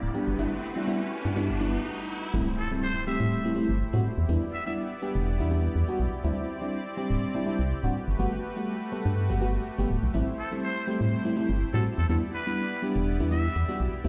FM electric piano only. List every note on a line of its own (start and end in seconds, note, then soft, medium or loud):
0.14 0.37 G3 medium
0.14 0.37 B3 medium
0.14 0.37 D4 medium
0.14 0.37 G4 medium
0.38 0.51 G3 loud
0.38 0.51 B3 medium
0.38 0.51 D4 medium
0.38 0.51 E4 loud
0.76 0.86 G3 medium
0.76 0.86 B3 medium
0.76 0.86 D4 medium
0.76 0.86 E4 medium
0.87 1.00 G3 medium
0.87 1.00 B3 medium
0.87 1.00 D4 medium
0.87 1.00 E4 loud
1.25 1.34 G3 medium
1.25 1.35 B3 medium
1.25 1.35 D4 medium
1.25 1.35 E4 medium
1.36 1.48 G3 loud
1.36 1.49 B3 medium
1.36 1.49 D4 medium
1.36 1.49 E4 loud
1.60 1.73 G3 loud
1.60 1.73 B3 medium
1.60 1.73 D4 medium
1.60 1.73 E4 loud
2.34 2.46 G3 loud
2.34 2.46 A3 medium
2.34 2.46 C4 medium
2.34 2.46 E4 loud
2.71 2.89 G3 medium
2.71 2.89 A3 medium
2.71 2.89 C4 medium
2.71 2.89 E4 medium
3.07 3.41 G3 medium
3.07 3.41 A3 medium
3.07 3.42 C4 medium
3.07 3.42 G4 loud
3.44 3.53 G3 loud
3.44 3.54 A3 medium
3.44 3.54 C4 medium
3.44 3.54 E4 loud
3.56 3.68 G3 loud
3.56 3.68 A3 medium
3.56 3.68 C4 medium
3.56 3.68 E4 loud
3.93 4.04 G3 medium
3.93 4.04 A3 medium
3.93 4.04 C4 medium
3.93 4.04 F#4 loud
4.29 4.41 G3 medium
4.29 4.41 B3 medium
4.29 4.41 D4 medium
4.29 4.41 E4 loud
4.66 4.84 G3 medium
4.66 4.84 B3 medium
4.66 4.84 D4 medium
4.66 4.84 E4 medium
5.02 5.36 G3 medium
5.02 5.37 B3 medium
5.02 5.37 D4 medium
5.02 5.37 G4 loud
5.39 5.49 G3 medium
5.39 5.49 B3 medium
5.39 5.49 D4 medium
5.39 5.49 E4 loud
5.51 5.63 G3 loud
5.51 5.63 B3 medium
5.51 5.63 D4 medium
5.51 5.63 E4 loud
5.88 5.99 G3 loud
5.88 5.99 B3 medium
5.88 5.99 D4 medium
5.88 5.99 F#4 loud
6.24 6.36 G3 loud
6.24 6.36 C4 medium
6.24 6.36 D4 medium
6.24 6.37 E4 loud
6.61 6.79 G3 medium
6.61 6.79 C4 medium
6.61 6.79 D4 medium
6.61 6.80 E4 medium
6.97 7.32 G3 medium
6.97 7.32 C4 medium
6.97 7.32 D4 medium
6.97 7.32 G4 loud
7.34 7.44 G3 medium
7.34 7.44 C4 medium
7.34 7.44 D4 medium
7.34 7.44 E4 loud
7.46 7.58 G3 loud
7.46 7.58 C4 medium
7.46 7.58 D4 medium
7.46 7.59 E4 loud
7.83 7.93 G3 loud
7.83 7.93 C4 medium
7.83 7.94 D4 medium
7.83 7.94 F#4 loud
8.19 8.31 G3 loud
8.19 8.31 A3 medium
8.19 8.32 B3 medium
8.19 8.32 F#4 loud
8.56 8.74 G3 medium
8.56 8.74 A3 medium
8.56 8.75 B3 medium
8.56 8.75 F#4 medium
8.92 9.27 G3 medium
8.92 9.27 A3 medium
8.92 9.27 B3 medium
8.92 9.27 A4 loud
9.30 9.39 G3 medium
9.30 9.39 A3 medium
9.30 9.39 B3 medium
9.30 9.39 F#4 loud
9.41 9.53 G3 loud
9.41 9.53 A3 medium
9.41 9.54 B3 medium
9.41 9.54 F#4 loud
9.78 9.89 G3 loud
9.78 9.89 A3 medium
9.78 9.89 B3 medium
9.78 9.89 G4 loud
10.14 10.26 G3 loud
10.14 10.27 A3 medium
10.14 10.27 C4 medium
10.14 10.27 E4 loud
10.51 10.69 G3 medium
10.51 10.70 A3 medium
10.51 10.70 C4 medium
10.51 10.70 E4 medium
10.87 11.22 G3 medium
10.87 11.22 A3 medium
10.87 11.22 C4 medium
10.87 11.22 G4 loud
11.25 11.34 G3 medium
11.25 11.34 A3 medium
11.25 11.34 C4 medium
11.25 11.34 E4 loud
11.36 11.48 G3 medium
11.36 11.49 A3 medium
11.36 11.49 C4 medium
11.36 11.49 E4 loud
11.74 11.84 G3 loud
11.74 11.84 A3 medium
11.74 11.84 C4 medium
11.74 11.85 F#4 loud
12.09 12.22 G3 loud
12.09 12.22 B3 medium
12.09 12.22 D4 medium
12.09 12.22 E4 loud
12.47 12.65 G3 medium
12.47 12.65 B3 medium
12.47 12.65 D4 medium
12.47 12.65 E4 medium
12.82 13.17 G3 medium
12.82 13.17 B3 medium
12.82 13.17 D4 medium
12.82 13.17 G4 loud
13.20 13.29 G3 loud
13.20 13.29 B3 medium
13.20 13.29 D4 medium
13.20 13.29 E4 loud
13.31 13.43 G3 loud
13.31 13.44 B3 medium
13.31 13.44 D4 medium
13.31 13.44 E4 loud
13.69 13.79 G3 loud
13.69 13.79 B3 medium
13.69 13.80 D4 medium
13.69 13.80 F#4 loud
14.04 14.09 G3 loud
14.04 14.09 C4 medium
14.04 14.09 D4 medium
14.04 14.09 E4 loud